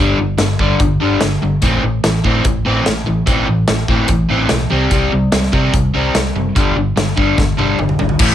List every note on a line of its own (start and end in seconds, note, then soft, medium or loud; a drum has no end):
0.00 0.12 G1 medium
0.00 0.17 G2 medium
0.00 0.18 D3 medium
0.00 0.18 G3 loud
0.18 0.34 G1 medium
0.18 0.37 G2 medium
0.18 0.37 D3 medium
0.38 0.54 G1 medium
0.38 0.57 G2 medium
0.38 0.57 D3 medium
0.38 snare medium
0.38 closed hi-hat medium
0.59 0.74 G2 medium
0.59 0.79 G2 medium
0.59 0.79 D3 loud
0.59 0.80 G3 medium
0.59 kick medium
0.80 0.95 G1 medium
0.80 0.99 G2 medium
0.80 0.99 D3 medium
0.80 kick loud
0.80 closed hi-hat medium
1.00 1.16 G1 medium
1.00 1.20 G2 medium
1.00 1.20 D3 medium
1.00 1.21 G3 medium
1.21 1.37 G1 medium
1.21 1.40 G2 medium
1.21 1.40 D3 medium
1.21 snare loud
1.21 closed hi-hat soft
1.42 1.57 G1 medium
1.42 1.60 G2 medium
1.42 1.61 D3 medium
1.62 1.78 A1 medium
1.62 1.82 A2 medium
1.62 1.82 E3 medium
1.62 1.82 C4 medium
1.62 kick medium
1.62 closed hi-hat medium
1.83 1.98 A1 medium
1.83 2.02 A2 medium
1.83 2.02 E3 medium
2.04 2.19 A1 medium
2.04 2.22 A2 medium
2.04 2.22 E3 medium
2.04 snare loud
2.04 closed hi-hat medium
2.24 2.44 A2 medium
2.24 2.40 A2 medium
2.24 2.44 E3 medium
2.24 2.44 C4 medium
2.24 kick medium
2.45 2.60 A1 medium
2.45 2.63 A2 medium
2.45 2.64 E3 medium
2.45 kick loud
2.45 closed hi-hat medium
2.65 2.81 A1 medium
2.65 2.85 A2 medium
2.65 2.85 E3 medium
2.65 2.85 C4 medium
2.86 3.01 A1 medium
2.86 3.05 A2 medium
2.86 3.05 E3 medium
2.86 snare medium
2.86 closed hi-hat medium
3.06 3.22 A1 medium
3.06 3.25 A2 medium
3.06 3.25 E3 medium
3.26 3.42 A1 medium
3.26 3.46 A2 medium
3.26 3.46 E3 medium
3.26 3.47 C4 medium
3.26 kick medium
3.26 closed hi-hat soft
3.47 3.63 A1 medium
3.47 3.66 A2 medium
3.47 3.66 E3 medium
3.68 3.83 A1 medium
3.68 3.87 A2 medium
3.68 3.87 E3 medium
3.68 snare loud
3.68 closed hi-hat medium
3.88 4.04 A2 medium
3.88 4.08 A2 medium
3.88 4.09 E3 loud
3.88 4.09 C4 loud
3.88 kick medium
4.08 4.24 A1 medium
4.08 4.28 A2 medium
4.08 4.28 E3 medium
4.08 kick loud
4.08 closed hi-hat medium
4.29 4.45 A1 medium
4.29 4.49 A2 medium
4.29 4.49 E3 medium
4.29 4.50 C4 medium
4.49 4.66 B1 medium
4.49 4.69 A2 medium
4.49 4.69 E3 medium
4.49 snare medium
4.49 closed hi-hat medium
4.71 4.86 C2 medium
4.71 4.90 C3 medium
4.71 4.90 G3 medium
4.71 4.91 C4 loud
4.91 5.06 C2 medium
4.91 5.11 C3 medium
4.91 5.11 G3 medium
4.91 5.12 C4 medium
4.91 kick medium
4.91 closed hi-hat medium
5.12 5.27 C2 medium
5.12 5.31 C3 medium
5.12 5.31 G3 medium
5.32 5.47 C2 medium
5.32 5.51 C3 medium
5.32 5.51 G3 medium
5.32 snare loud
5.32 closed hi-hat medium
5.43 snare soft
5.52 5.72 C3 medium
5.52 5.68 C3 medium
5.52 5.73 G3 medium
5.52 5.73 C4 medium
5.52 kick medium
5.74 5.89 C2 medium
5.74 5.92 C3 medium
5.74 5.92 G3 medium
5.74 kick loud
5.74 closed hi-hat medium
5.94 6.09 C2 medium
5.94 6.14 C3 medium
5.94 6.14 G3 medium
5.94 6.14 C4 medium
6.15 6.30 C2 medium
6.15 6.34 C3 medium
6.15 6.34 G3 medium
6.15 snare loud
6.15 closed hi-hat medium
6.34 6.50 F#1 medium
6.34 6.54 C3 medium
6.34 6.54 G3 medium
6.56 6.71 G1 medium
6.56 6.75 G2 medium
6.56 6.76 D3 medium
6.56 6.76 G3 medium
6.56 kick loud
6.56 closed hi-hat medium
6.76 6.91 G1 medium
6.76 6.95 G2 medium
6.76 6.95 D3 medium
6.96 7.12 G1 medium
6.96 7.15 G2 medium
6.96 7.16 D3 medium
6.96 snare loud
6.96 closed hi-hat medium
7.17 7.36 G2 medium
7.17 7.33 G2 medium
7.17 7.37 D3 medium
7.17 7.37 G3 medium
7.17 kick medium
7.37 7.53 G1 medium
7.37 7.56 G2 medium
7.37 7.57 D3 medium
7.37 kick loud
7.37 snare medium
7.57 7.73 G1 medium
7.57 7.77 G2 medium
7.57 7.78 D3 medium
7.57 7.78 G3 medium
7.57 high tom medium
7.78 7.93 G1 medium
7.78 7.98 G2 medium
7.78 7.98 D3 medium
7.78 mid tom medium
7.89 mid tom medium
7.99 8.15 G#1 medium
7.99 8.18 G2 medium
7.99 8.18 D3 medium
7.99 floor tom medium
8.09 floor tom medium
8.19 8.35 A1 loud
8.19 8.35 A2 loud
8.19 8.35 E3 loud
8.19 8.35 A3 loud
8.19 kick loud
8.19 crash loud